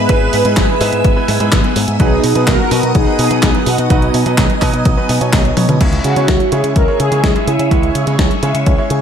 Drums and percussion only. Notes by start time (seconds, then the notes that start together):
0.09 kick, closed hi-hat
0.33 open hi-hat
0.45 closed hi-hat
0.57 kick, snare, clap, closed hi-hat
0.81 open hi-hat
0.93 closed hi-hat
1.04 kick, closed hi-hat
1.28 snare, open hi-hat
1.40 closed hi-hat
1.52 kick, snare, clap, closed hi-hat
1.64 closed hi-hat
1.76 open hi-hat
1.88 closed hi-hat
2.00 kick, closed hi-hat
2.24 open hi-hat
2.35 closed hi-hat
2.47 kick, snare, clap, closed hi-hat
2.71 open hi-hat
2.83 closed hi-hat
2.95 kick, closed hi-hat
3.19 open hi-hat
3.31 closed hi-hat
3.43 kick, snare, clap, closed hi-hat
3.55 closed hi-hat
3.66 open hi-hat
3.78 closed hi-hat
3.90 kick, closed hi-hat
4.02 closed hi-hat
4.14 open hi-hat
4.26 closed hi-hat
4.38 kick, snare, clap, closed hi-hat
4.50 closed hi-hat
4.62 kick, clap, open hi-hat
4.74 closed hi-hat
4.85 kick, closed hi-hat
5.09 snare, open hi-hat
5.21 closed hi-hat
5.33 kick, snare, clap, open hi-hat
5.45 closed hi-hat
5.57 open hi-hat, high tom
5.69 closed hi-hat, mid tom
5.81 kick, closed hi-hat, crash
5.93 closed hi-hat
6.04 closed hi-hat
6.16 closed hi-hat
6.28 kick, snare, closed hi-hat
6.40 closed hi-hat
6.52 closed hi-hat
6.64 closed hi-hat
6.76 kick, closed hi-hat
7.00 closed hi-hat
7.12 closed hi-hat
7.24 kick, snare, closed hi-hat
7.36 closed hi-hat
7.48 closed hi-hat
7.59 closed hi-hat
7.71 kick, closed hi-hat
7.83 closed hi-hat
7.95 closed hi-hat
8.07 closed hi-hat
8.19 kick, snare, closed hi-hat
8.31 closed hi-hat
8.43 closed hi-hat
8.55 closed hi-hat
8.66 kick, closed hi-hat
8.90 closed hi-hat